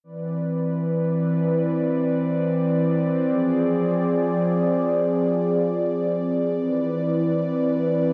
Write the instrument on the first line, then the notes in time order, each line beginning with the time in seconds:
analog synth pad
0.04 E3 C4 B4 D5
3.30 F3 G#4
6.56 E3 B4